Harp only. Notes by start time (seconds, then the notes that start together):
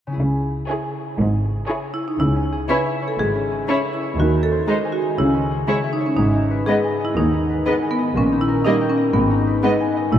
0.07 C#3 C#4
0.12 E4 G#4
2.19 C#3
2.36 C#4
2.52 G#4
2.69 C#5
2.86 E5
3.02 C#5
3.19 G#3
3.35 C#4
3.51 G#4
3.68 C#5
3.85 E5
4.02 C#5
4.18 D#3
4.35 D#4
4.52 C5
4.68 D#5
4.85 G#5
5.01 D#5
5.18 C#3
5.34 C#4
5.51 G#4
5.68 C#5
5.84 E5
6.00 C#5
6.18 G#2
6.34 D#4
6.51 B4
6.67 D#5
6.84 G#5
7.00 D#5
7.17 D#3
7.34 D#4
7.50 B4
7.66 D#5
7.82 G#5
7.99 D#5
8.15 A#2
8.32 D#4
8.48 A#4
8.64 D#5
8.81 G5
8.97 D#5
9.14 G#2
9.30 D#4
9.47 B4
9.64 D#5
9.80 G#5
9.97 D#5
10.13 A2